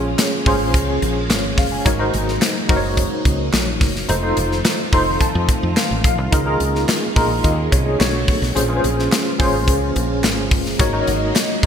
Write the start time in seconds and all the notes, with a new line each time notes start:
Already playing: A#1 C#3 F3 G#3 A#3 C#4 F4 G#4 C#5
0.19 snare, clap, closed hi-hat
0.46 G#1 C#4 F4 G#4 C5, kick, open hi-hat
0.74 C#2, kick, closed hi-hat
1.02 A#1, closed hi-hat
1.30 G#1 C#5, snare, clap, closed hi-hat
1.58 F#1 F5, kick, snare, open hi-hat
1.72 G#5
1.85 G#1 F#3 A#3 D#4 F#4 A#4 C#5, kick, closed hi-hat
1.99 D#4 F#4 A#4 C5
2.14 G#1, closed hi-hat
2.28 snare
2.42 snare, clap, closed hi-hat
2.69 F#1 D#4 F#4 A#4 C5, kick, open hi-hat
2.76 C#5
2.97 kick, closed hi-hat
3.25 C#2, kick, closed hi-hat
3.53 A#1, snare, clap, closed hi-hat
3.81 F#1, kick, snare, open hi-hat
3.96 snare
4.09 F1 D#3 F3 A3 C4 D#4 F4 A4 C5, closed hi-hat
4.23 D#4 F4 A4 C5
4.37 F1, closed hi-hat
4.52 snare
4.65 snare, clap, closed hi-hat
4.93 F1 D#4 F4 A4 C5 C6, kick, open hi-hat
5.21 A5, kick, closed hi-hat
5.35 F2
5.49 kick, closed hi-hat
5.63 F2
5.77 F5, snare, clap, closed hi-hat
5.91 A1
6.04 A#1 F5, kick, closed hi-hat
6.18 C2
6.32 C#2 G#3 A#3 C#4 D#4 F4 G#4 A#4, kick, closed hi-hat
6.46 D#4 F4 G#4 A#4
6.60 C#2, closed hi-hat
6.75 snare
6.89 snare, clap, closed hi-hat
7.16 A#1 D#4 F4 G#4 A#4, kick, open hi-hat
7.44 D#2 D#5, kick, closed hi-hat
7.72 C2 C#5, kick, closed hi-hat
7.86 G#4
7.99 B1 D3 F#3 A3 B3 D4 F#4 A4 C#5, snare, clap, closed hi-hat
8.28 kick, open hi-hat
8.42 B1, snare
8.55 A#1 C#3 F3 G#3 A#3 C#4 F4 G#4 C5, closed hi-hat
8.68 C#4 F4 G#4 B4
8.76 C5
8.84 A#1, closed hi-hat
8.99 snare
9.12 snare, clap, closed hi-hat
9.39 G#1 C#4 F4 G#4 C5, kick, open hi-hat
9.68 C#2, kick, closed hi-hat
9.96 A#1, closed hi-hat
10.24 G#1, snare, clap, closed hi-hat
10.51 F#1, kick, open hi-hat
10.66 snare
10.79 G#1 F#3 D#4 F#4 A#4 C#5, kick, closed hi-hat
10.93 D#4 F#4 A#4 C#5
11.01 D#5
11.07 G#1, closed hi-hat
11.36 snare, clap, closed hi-hat